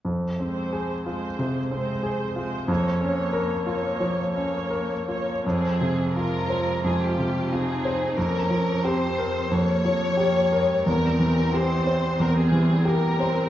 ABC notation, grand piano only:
X:1
M:4/4
L:1/8
Q:1/4=89
K:Fm
V:1 name="Grand piano"
F,, C A F C, C A F | F,, D B F F, D B F | F,, C, F c F,, C, F c | F,, F, G B F,, F, G B |
=E,, =E, G c E,, E, G c |]